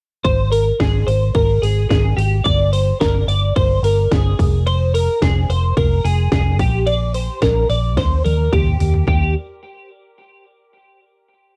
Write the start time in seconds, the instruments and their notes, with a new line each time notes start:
0.24 fingered electric bass G#1, clean electric guitar C5, kick, ride
0.52 clean electric guitar A#4, open hi-hat
0.80 fingered electric bass G#1, clean electric guitar G#4, kick, snare, ride
1.07 fingered electric bass G#1, clean electric guitar C5, open hi-hat
1.35 fingered electric bass G#1, clean electric guitar A#4, kick, ride
1.62 fingered electric bass G#1, clean electric guitar G#4, open hi-hat
1.89 fingered electric bass G#1, clean electric guitar G#4, kick, snare, ride
2.17 fingered electric bass G#1, clean electric guitar G4, open hi-hat
2.44 fingered electric bass G1, clean electric guitar D5, kick, ride
2.73 clean electric guitar C5, open hi-hat
3.00 fingered electric bass G1, clean electric guitar A#4, kick, snare, ride
3.27 fingered electric bass G1, clean electric guitar D5, open hi-hat
3.56 fingered electric bass G1, clean electric guitar C5, kick, ride
3.82 fingered electric bass G1, clean electric guitar A#4, open hi-hat
4.12 fingered electric bass G1, clean electric guitar G#4, kick, snare, ride
4.39 fingered electric bass F1, kick, open hi-hat
4.67 clean electric guitar C5, ride
4.94 clean electric guitar A#4, open hi-hat
5.22 fingered electric bass F1, clean electric guitar G#4, kick, snare, ride
5.49 fingered electric bass F1, clean electric guitar C5, open hi-hat
5.77 fingered electric bass F1, clean electric guitar A#4, kick, ride
6.05 fingered electric bass F1, clean electric guitar G#4, open hi-hat
6.32 fingered electric bass F1, clean electric guitar G#4, kick, snare, ride
6.59 fingered electric bass A#1, clean electric guitar G4, kick, open hi-hat
6.87 clean electric guitar D5, ride
7.14 clean electric guitar C5, open hi-hat
7.42 fingered electric bass A#1, clean electric guitar A#4, kick, snare, ride
7.69 fingered electric bass A#1, clean electric guitar D5, open hi-hat
7.97 fingered electric bass D#2, clean electric guitar C5, kick, snare, ride
8.24 fingered electric bass D#2, clean electric guitar A#4, open hi-hat, high tom
8.52 fingered electric bass D#2, clean electric guitar G4, kick, mid tom, ride
8.67 mid tom
8.80 fingered electric bass D#2, floor tom, open hi-hat
8.94 floor tom
9.07 fingered electric bass D#2, clean electric guitar G4, kick, floor tom